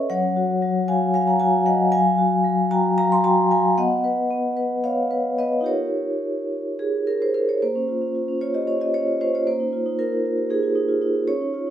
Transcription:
Already playing: C#4 A4 B4 C#5 D#5 E5
0.10 F#3 C#5 F#5
0.36 F#4
0.62 F#3
0.88 F#4 F5 G#5
1.14 F#3 F5 G#5
1.27 F#5 A#5
1.40 F#4 F5 G#5
1.66 F#3 D#5 F#5
1.92 F#3 F5 G#5
2.18 F#4
2.71 F#4 G5 A#5
2.98 F#3 F5 A#5
3.12 G#5 C6
3.24 F#4 G5 A#5
3.51 F#3 F5 G#5
3.78 B3 D#5 F#5
4.04 B4
4.30 B3
4.57 B4
4.84 B3 C#5 F5
5.11 B4
5.38 B3 B4 D#5
5.61 D#4 F4 G4
5.66 A#4 C#5
6.79 G#4
7.07 A#4
7.22 C5
7.34 A#4
7.49 C#5
7.62 A#3 C5
7.75 C#4
7.88 F4
8.01 C#4
8.15 F4
8.28 C#4
8.41 F4 C#5
8.54 G4 D#5
8.67 C#4 C#5
8.80 F4 D#5
8.94 C#4 C#5
9.07 F4
9.21 C#4 C5
9.34 F4 C#5
9.47 A#3 C5
9.60 D#4
9.73 F4
9.86 D#4
9.99 F4 A#4
10.12 D#4
10.25 F4
10.38 G4
10.50 D#4 G#4
10.63 F4
10.75 D#4
10.88 F4
11.02 D#4
11.14 F4
11.28 C#4 C#5
11.41 D#4
11.54 F4
11.67 D#4

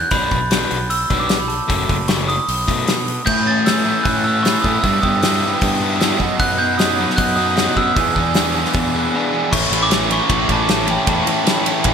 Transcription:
Already playing: F#6
0.11 B1 B2 F#3 B3 D4 B5, kick, open hi-hat
0.31 B1, kick, open hi-hat
0.51 B2 F#3 B3 D4, snare, open hi-hat
0.71 B1, open hi-hat
0.90 E6, open hi-hat
1.10 B1 B2 F#3 B3 D4, kick, open hi-hat
1.20 D6
1.29 snare, open hi-hat
1.41 B5
1.48 A5, open hi-hat
1.68 F#1 C#3 F#3 A3 C#4, kick, open hi-hat
1.89 F#1, kick, open hi-hat
2.08 C#3 F#3 A3 C#4 C#6, snare, open hi-hat
2.28 D#6, open hi-hat
2.48 B1, open hi-hat
2.68 B2 F#3 A3 D#4, kick, open hi-hat
2.88 snare, open hi-hat
3.08 open hi-hat
3.25 A2 E3 A3 C#4 E4 G6, kick, crash
3.46 C#4 A6
3.66 E4 E6, snare, open hi-hat
3.85 E3 A3 C#4 E4
3.89 A2
4.03 A2 C#4 F#6, kick, open hi-hat
4.24 A4 E6
4.43 A2 E3 A3 C#4 C#6, snare, open hi-hat
4.48 E4
4.61 A2 A3 D#6, kick
4.81 G2 G3 B3 E4 E6, kick, open hi-hat
4.86 G4
5.02 G2 B3 D#6, kick
5.22 E4 E6, snare, open hi-hat
5.40 G3 B3 E4 G4
5.61 G2 B3, kick, open hi-hat
5.83 G4
5.99 G3 B3 E4 G4, snare, open hi-hat
6.17 F#2 F#3 B3 D#4 F#4, kick
6.39 F#2 F#3 F#4 B4 D#5 B5 F#6, kick, open hi-hat
6.58 B3 G6
6.77 F#3 B3 D#4 F#4 D#6, snare, open hi-hat
6.99 F#3
7.10 snare
7.16 F#2 B3 F#6, kick, open hi-hat
7.36 D#4 F#4 D#6
7.40 F#3 B3
7.56 D#4, snare, open hi-hat
7.68 F#6
7.76 F#2 F#3 E6, kick
7.96 E2 B2 E3 B3 D4 G#4 D5 E5, kick, open hi-hat
8.00 G#4
8.16 E2 B3, kick
8.34 D4, snare, open hi-hat
8.55 B2 E3 B3 D4 G#4
8.59 E2
8.65 snare
8.73 E2 B3, kick, open hi-hat
8.95 G#4
9.13 E2 B2 E3 B3 D4
9.17 G#4
9.33 E3
9.51 A1 A2 E3 A3 C#4 E4 A4 C#5 E5 B5 C#6, kick, crash
9.71 A1 A2 E3 A3 C#4 E4, ride
9.83 D6
9.91 A2 E3 A3 C#4 E4, snare, ride
10.09 A2 E3 A3 C#4 E4 C#6, ride
10.29 A1 A2 E3 A3 C#4 E4, kick, ride
10.49 A1 A2 E3 A3 C#4 E4 A5, kick, ride
10.69 A2 E3 A3 C#4 E4 A5, snare, ride
10.87 A2 E3 A3 C#4 E4 G5, ride
11.05 E2 A2 E3 A3 C#4 E4 A5, kick, ride
11.25 A2 E3 A3 C#4 E4, ride
11.44 A2 E3 A3 C#4 E4, snare, ride
11.64 A2 E3 A3 C#4 E4, ride
11.84 A1 A2 E3 A3 C#4 E4, kick, ride

